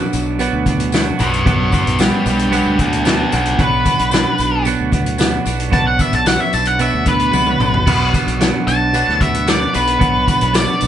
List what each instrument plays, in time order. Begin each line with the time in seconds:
Already playing: clean electric guitar B2 F#3 B3 D4 F#4
0.13 fingered electric bass B1, closed hi-hat, tambourine
0.39 clean electric guitar B2 F#3 B3 D4 F#4, closed hi-hat, tambourine
0.53 fingered electric bass D2
0.66 clean electric guitar B3 D4 F#4, kick, closed hi-hat, tambourine
0.80 closed hi-hat
0.92 clean electric guitar F#3 B3 D4 F#4, snare, closed hi-hat, tambourine
1.18 fingered electric bass B1, clean electric guitar B3 D4 F#4, lead electric guitar B4 D5, closed hi-hat, tambourine
1.34 closed hi-hat
1.44 fingered electric bass B1, clean electric guitar B2 F#3 B3 D4 F#4, lead electric guitar B4 D5, kick, closed hi-hat
1.72 clean electric guitar B3 D4 F#4, lead electric guitar B4 D5, kick, closed hi-hat, tambourine
1.86 fingered electric bass B1, closed hi-hat
1.99 clean electric guitar F#3 B3 D4 F#4, lead electric guitar D4 B4, snare, closed hi-hat, tambourine
2.26 fingered electric bass B1, lead electric guitar D4 B4, closed hi-hat, tambourine
2.39 closed hi-hat
2.50 clean electric guitar B2 F#3 B3 D4 F#4, lead electric guitar D4 B4, closed hi-hat, tambourine
2.66 fingered electric bass D2
2.78 clean electric guitar B3 D4 F#4, lead electric guitar F#4 A4, kick, closed hi-hat, tambourine
2.93 closed hi-hat
3.04 clean electric guitar F#3 B3 D4 F#4, lead electric guitar F#4 A4, snare, closed hi-hat, tambourine
3.31 fingered electric bass B1, clean electric guitar B3 D4 F#4, lead electric guitar F#4 A4, closed hi-hat, tambourine
3.46 closed hi-hat
3.58 fingered electric bass B1, clean electric guitar B2 F#3 B3 D4 F#4, lead electric guitar B4, kick, closed hi-hat
3.85 clean electric guitar B3 D4 F#4, kick, closed hi-hat, tambourine
3.99 fingered electric bass B1, closed hi-hat
4.11 clean electric guitar F#3 B3 D4 F#4, snare, closed hi-hat, tambourine
4.38 fingered electric bass B1, closed hi-hat, tambourine
4.65 clean electric guitar B2 F#3 B3 D4 F#4, closed hi-hat, tambourine
4.80 fingered electric bass D2
4.91 clean electric guitar B3 D4 F#4, kick, closed hi-hat, tambourine
5.06 closed hi-hat
5.18 clean electric guitar F#3 B3 D4 F#4, snare, closed hi-hat, tambourine
5.45 fingered electric bass B1, clean electric guitar B3 D4 F#4, closed hi-hat, tambourine
5.60 closed hi-hat
5.70 fingered electric bass B1, clean electric guitar B2 F#3 B3 D4 F#4, lead electric guitar A5, kick, closed hi-hat, tambourine
5.87 lead electric guitar F#5
5.98 clean electric guitar B3 D4 F#4, lead electric guitar E5, kick, closed hi-hat, tambourine
6.13 fingered electric bass B1, lead electric guitar A5, closed hi-hat
6.25 clean electric guitar F#3 B3 D4 F#4, lead electric guitar F#5, snare, closed hi-hat, tambourine
6.40 lead electric guitar E5
6.53 fingered electric bass B1, lead electric guitar A5, closed hi-hat, tambourine
6.65 lead electric guitar F#5, closed hi-hat
6.79 clean electric guitar B2 F#3 B3 D4 F#4, lead electric guitar E5, closed hi-hat, tambourine
6.94 fingered electric bass D2
7.05 clean electric guitar B3 D4 F#4, lead electric guitar B4, kick, closed hi-hat, tambourine
7.19 closed hi-hat
7.32 fingered electric bass C#2, clean electric guitar F#3 B3 D4 F#4, high tom, tambourine
7.46 mid tom
7.59 fingered electric bass B1, clean electric guitar B3 D4 F#4, mid tom, tambourine
7.74 floor tom
7.86 fingered electric bass B1, clean electric guitar B2 F#3 B3 D4 F#4, kick, crash
8.13 clean electric guitar B3 D4 F#4, kick, closed hi-hat, tambourine
8.27 fingered electric bass B1, closed hi-hat
8.39 clean electric guitar F#3 B3 D4 F#4, snare, closed hi-hat, tambourine
8.67 fingered electric bass B1, lead electric guitar A5, closed hi-hat, tambourine
8.93 clean electric guitar B2 F#3 B3 D4 F#4, closed hi-hat, tambourine
9.08 fingered electric bass D2, snare
9.20 clean electric guitar B3 D4 F#4, lead electric guitar E5, kick, closed hi-hat, tambourine
9.34 closed hi-hat
9.46 clean electric guitar F#3 B3 D4 F#4, lead electric guitar D5, snare, closed hi-hat, tambourine
9.73 fingered electric bass B1, clean electric guitar B3 D4 F#4, lead electric guitar B4, closed hi-hat, tambourine
9.87 closed hi-hat
9.99 fingered electric bass B1, clean electric guitar B2 F#3 B3 D4 F#4, kick, closed hi-hat
10.26 clean electric guitar B3 D4 F#4, kick, closed hi-hat, tambourine
10.41 fingered electric bass B1, closed hi-hat
10.53 clean electric guitar F#3 B3 D4 F#4, lead electric guitar D5, snare, closed hi-hat, tambourine
10.81 fingered electric bass B1, closed hi-hat, tambourine